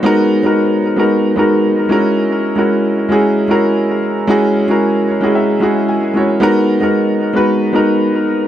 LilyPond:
\new Staff \with { instrumentName = "Grand piano" } { \time 4/4 \key gis \minor \tempo 4 = 113 << { r1 | r1 | r4. cis''8 e''4 gis''4 | r1 | } \\ { <gis b dis' fis' ais'>8 r16 <gis b dis' fis' ais'>8. r16 <gis b dis' fis' ais'>8 r16 <gis b dis' fis' ais'>8. r16 <gis cis' e' fis' ais'>8~ | <gis cis' e' fis' ais'>8 r16 <gis cis' e' fis' ais'>8. r16 <gis cis' e' fis' gis'>8 r16 <gis cis' e' fis' ais'>4~ <gis cis' e' fis' ais'>16 r16 | <gis cis' e' fis' gis'>8 r16 <gis cis' e' fis' ais'>8. r16 <gis cis' e' fis' gis'>8 r16 <gis cis' e' fis' gis'>8. r16 <gis cis' e' fis' cis''>8 | <gis b dis' fis' ais'>8 r16 <gis b dis' fis' ais'>8. r16 <gis b dis' fis' b'>8 r16 <gis b dis' fis' ais'>4~ <gis b dis' fis' ais'>16 r16 | } >> }